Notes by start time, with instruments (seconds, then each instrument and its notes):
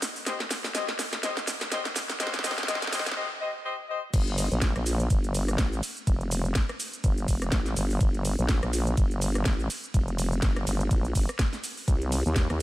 0.02 snare, open hi-hat, shaker
0.16 open hi-hat, shaker
0.26 horn section G4 C5 D#5, snare, closed hi-hat, shaker
0.40 snare, closed hi-hat
0.51 snare, open hi-hat, shaker
0.64 snare, shaker
0.75 horn section G4 C5 D#5, snare, closed hi-hat, shaker
0.89 snare, closed hi-hat
0.99 snare, open hi-hat, shaker
1.13 snare, closed hi-hat, shaker
1.23 horn section G4 C5 D#5, snare, closed hi-hat, shaker
1.37 snare, shaker
1.47 snare, open hi-hat, shaker
1.61 snare, closed hi-hat, shaker
1.72 horn section G4 C5 D#5, snare, closed hi-hat, shaker
1.85 snare, closed hi-hat, shaker
1.96 snare, open hi-hat, shaker
2.10 snare, closed hi-hat, shaker
2.20 horn section G4 C5 D#5, snare, closed hi-hat, shaker
2.27 snare
2.34 snare, closed hi-hat, shaker
2.39 snare
2.44 horn section G4 C5 D#5, snare, open hi-hat, shaker
2.51 snare
2.58 snare, closed hi-hat, shaker
2.63 snare
2.68 horn section G4 C5 D#5, snare, closed hi-hat, shaker
2.75 snare
2.82 snare, closed hi-hat, shaker
2.87 snare
2.93 horn section G4 C5 D#5, snare, open hi-hat, shaker
2.99 snare
3.06 snare, closed hi-hat, shaker
3.12 snare
3.17 horn section G4 C5 D#5
3.41 horn section G4 C5 D#5
3.65 horn section G4 C5 D#5
3.89 horn section G4 C5 D#5
4.14 wobble bass G1, kick, closed hi-hat, crash, ride, shaker
4.27 closed hi-hat
4.38 open hi-hat, ride, shaker
4.52 wobble bass A#1, closed hi-hat, shaker
4.62 kick, snare, closed hi-hat, ride, shaker
4.76 wobble bass A#1, cross-stick, closed hi-hat
4.86 open hi-hat, ride, shaker
5.00 closed hi-hat, shaker
5.10 wobble bass G1, kick, closed hi-hat, ride, shaker
5.24 closed hi-hat, shaker
5.34 open hi-hat, ride, shaker
5.48 cross-stick, closed hi-hat, shaker
5.58 wobble bass A1, kick, snare, closed hi-hat, ride, shaker
5.73 shaker
5.83 open hi-hat, ride, shaker
5.97 closed hi-hat, shaker
6.07 wobble bass F1, kick, closed hi-hat, ride, shaker
6.21 closed hi-hat
6.31 open hi-hat, ride, shaker
6.45 closed hi-hat, shaker
6.55 kick, snare, closed hi-hat, ride, shaker
6.69 cross-stick, closed hi-hat
6.80 open hi-hat, ride, shaker
6.93 closed hi-hat, shaker
7.04 wobble bass G1, kick, closed hi-hat, ride, shaker
7.18 closed hi-hat, shaker
7.28 wobble bass F1, kick, open hi-hat, ride, shaker
7.42 cross-stick, closed hi-hat, shaker
7.52 wobble bass A1, kick, snare, closed hi-hat, ride, shaker
7.66 snare, closed hi-hat, shaker
7.76 wobble bass G1, open hi-hat, ride, shaker
7.90 open hi-hat, shaker
8.01 wobble bass G1, kick, closed hi-hat, ride, shaker
8.14 closed hi-hat
8.25 open hi-hat, ride, shaker
8.39 wobble bass A#1, closed hi-hat, shaker
8.49 kick, snare, closed hi-hat, ride, shaker
8.63 wobble bass A#1, cross-stick, closed hi-hat
8.73 open hi-hat, ride, shaker
8.87 closed hi-hat, shaker
8.97 wobble bass G1, kick, closed hi-hat, ride, shaker
9.11 closed hi-hat, shaker
9.22 open hi-hat, ride, shaker
9.35 cross-stick, closed hi-hat, shaker
9.45 wobble bass A1, kick, snare, closed hi-hat, ride, shaker
9.60 shaker
9.70 open hi-hat, ride, shaker
9.84 closed hi-hat, shaker
9.94 wobble bass F1, kick, closed hi-hat, ride, shaker
10.08 closed hi-hat
10.18 open hi-hat, ride, shaker
10.32 closed hi-hat, shaker
10.42 wobble bass G1, kick, snare, closed hi-hat, ride, shaker
10.56 cross-stick, closed hi-hat
10.67 wobble bass G1, open hi-hat, ride, shaker
10.81 closed hi-hat, shaker
10.91 wobble bass A#1, kick, closed hi-hat, ride, shaker
11.05 closed hi-hat, shaker
11.15 wobble bass G1, kick, open hi-hat, ride, shaker
11.29 cross-stick, closed hi-hat, shaker
11.39 kick, snare, closed hi-hat, ride, shaker
11.53 snare, closed hi-hat, shaker
11.64 open hi-hat, ride, shaker
11.77 open hi-hat, shaker
11.88 wobble bass C2, kick, closed hi-hat, ride, shaker
12.02 closed hi-hat
12.12 open hi-hat, ride, shaker
12.26 wobble bass D#2, closed hi-hat, shaker
12.36 kick, snare, closed hi-hat, ride, shaker
12.50 wobble bass D#2, cross-stick, closed hi-hat